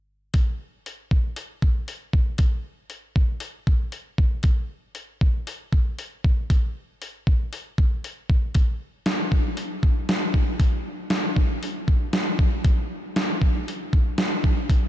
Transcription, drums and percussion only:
0.34 kick loud
0.34 open hi-hat soft
0.86 open hi-hat soft
1.11 kick medium
1.36 open hi-hat soft
1.62 kick medium
1.88 open hi-hat soft
2.13 kick medium
2.38 kick medium
2.38 open hi-hat soft
2.90 open hi-hat soft
3.16 kick medium
3.40 open hi-hat soft
3.67 kick medium
3.92 open hi-hat soft
4.18 kick medium
4.43 kick loud
4.43 open hi-hat soft
4.95 open hi-hat soft
5.21 kick medium
5.47 open hi-hat soft
5.73 kick medium
5.99 open hi-hat soft
6.24 kick medium
6.50 kick loud
6.50 open hi-hat soft
7.02 open hi-hat soft
7.27 kick medium
7.53 open hi-hat soft
7.78 kick medium
8.04 open hi-hat soft
8.30 kick medium
8.55 kick loud
8.55 open hi-hat soft
9.06 snare medium
9.06 open hi-hat soft
9.32 kick medium
9.57 open hi-hat soft
9.83 kick medium
10.09 snare loud
10.09 open hi-hat soft
10.34 kick medium
10.60 kick loud
10.60 open hi-hat medium
11.10 snare loud
11.10 open hi-hat soft
11.36 kick medium
11.63 open hi-hat soft
11.88 kick medium
12.13 snare loud
12.13 open hi-hat soft
12.39 kick medium
12.64 kick loud
12.64 open hi-hat soft
13.16 snare medium
13.16 open hi-hat soft
13.42 kick medium
13.68 open hi-hat soft
13.93 kick medium
14.18 snare loud
14.18 open hi-hat soft
14.44 kick medium
14.70 kick loud
14.70 open hi-hat soft

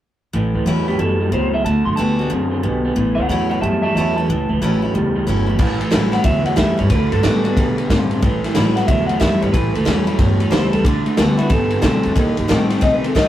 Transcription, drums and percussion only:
5.59 kick loud
5.59 crash loud
5.81 ride medium
5.91 snare loud
5.91 ride medium
6.13 snare soft
6.13 ride medium
6.24 kick loud
6.24 ride loud
6.46 ride medium
6.57 kick medium
6.57 snare loud
6.57 ride medium
6.79 ride medium
6.90 kick loud
6.90 ride medium
7.12 ride medium
7.23 snare loud
7.23 ride medium
7.45 ride medium
7.57 kick loud
7.57 snare soft
7.57 ride medium
7.78 ride medium
7.90 kick medium
7.90 snare loud
7.90 ride medium
8.11 ride medium
8.22 kick loud
8.22 ride medium
8.44 snare soft
8.44 ride medium
8.55 snare loud
8.55 ride medium
8.77 snare soft
8.77 ride medium
8.88 kick loud
8.88 ride medium
9.09 ride medium
9.21 kick medium
9.21 snare loud
9.21 ride medium
9.42 ride medium
9.53 kick loud
9.53 snare soft
9.53 ride medium
9.75 ride medium
9.86 snare loud
9.86 ride medium
10.07 ride medium
10.19 kick loud
10.19 snare soft
10.19 ride medium
10.40 ride medium
10.52 snare loud
10.52 ride medium
10.73 ride medium
10.84 kick loud
10.84 snare soft
10.84 ride medium
11.06 ride medium
11.17 snare loud
11.17 ride medium
11.39 ride medium
11.50 kick loud
11.50 ride medium
11.70 ride medium
11.82 kick medium
11.82 snare loud
11.82 ride medium
12.03 ride medium
12.15 kick loud
12.15 snare soft
12.15 ride medium
12.37 ride medium
12.49 snare loud
12.49 ride medium
12.70 snare soft
12.70 ride medium
12.82 kick loud
12.82 snare soft
12.82 ride medium
13.04 ride medium
13.15 kick medium
13.15 snare loud
13.15 ride medium

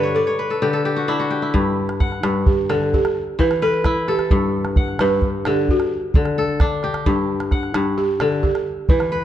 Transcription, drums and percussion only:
1.54 calabash thump medium
1.89 calabash click soft
2.00 calabash thump medium
2.00 calabash click soft
2.12 calabash click soft
2.23 calabash click medium
2.46 calabash thump medium
2.70 calabash click medium
2.82 calabash click soft
2.94 calabash thump medium
3.05 calabash click soft
3.39 calabash thump medium
3.51 calabash click soft
3.84 calabash thump medium
3.84 calabash click medium
4.08 calabash click soft
4.19 calabash click soft
4.31 calabash thump medium
4.65 calabash click soft
4.76 calabash thump medium
4.76 calabash click soft
4.88 calabash click soft
4.99 calabash click medium
5.22 calabash thump medium
5.45 calabash click medium
5.57 calabash click soft
5.69 calabash thump medium
5.80 calabash click soft
6.14 calabash thump medium
6.25 calabash click medium
6.60 calabash thump medium
6.60 calabash click medium
6.83 calabash click soft
6.94 calabash click medium
7.06 calabash thump medium
7.40 calabash click soft
7.51 calabash thump medium
7.51 calabash click soft
7.63 calabash click soft
7.74 calabash click medium
8.20 calabash click medium
8.32 calabash click soft
8.43 calabash thump medium
8.55 calabash click soft
8.89 calabash thump medium
9.00 calabash click soft

